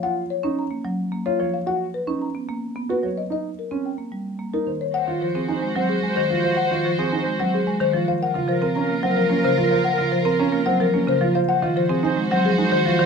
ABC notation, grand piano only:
X:1
M:3/4
L:1/16
Q:1/4=110
K:D#m
V:1 name="Grand piano"
E z2 D z4 z E c z | F z2 D z4 z F c z | D z2 C z4 z D =c z | [K:Abmix] z F z A E z C z3 F c |
z F z A E z C z3 F c | z F z B D z C z D z F c | z F z B D z C z D z F c | z F z A E z C z E z F c |]